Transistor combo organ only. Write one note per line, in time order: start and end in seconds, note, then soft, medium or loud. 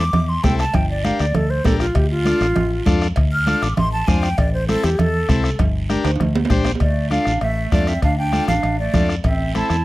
0.44 0.65 C4 medium
0.44 0.65 E4 medium
0.44 0.65 A4 medium
1.04 1.26 D4 medium
1.04 1.26 G4 medium
1.04 1.26 A#4 medium
1.65 1.86 D4 medium
1.65 1.86 G4 medium
1.65 1.87 A#4 medium
2.25 2.47 D4 medium
2.25 2.47 F4 medium
2.25 2.47 A4 medium
2.86 3.07 D4 medium
2.86 3.08 F4 medium
2.86 3.08 A4 loud
3.46 3.68 D4 medium
3.46 3.68 F4 medium
3.46 3.68 A4 medium
4.07 4.29 D4 medium
4.07 4.29 F4 medium
4.07 4.29 C5 medium
4.68 4.90 C4 medium
4.68 4.90 E4 medium
4.68 4.90 A4 medium
5.28 5.50 C4 medium
5.28 5.50 E4 medium
5.28 5.51 A4 medium
5.89 6.11 D4 medium
5.89 6.11 G4 medium
5.89 6.11 A#4 medium
6.49 6.71 D4 loud
6.49 6.72 G4 medium
6.49 6.72 C5 loud
7.10 7.32 D4 medium
7.10 7.33 F4 medium
7.10 7.33 A4 medium
7.72 7.93 D4 medium
7.72 7.94 F4 medium
7.72 7.94 A4 medium
8.32 8.54 D4 medium
8.32 8.54 F4 medium
8.32 8.54 A4 medium
8.94 9.15 D4 medium
8.94 9.15 F4 medium
8.94 9.15 A4 medium
9.55 9.76 C4 medium
9.55 9.76 E4 medium
9.55 9.76 A4 medium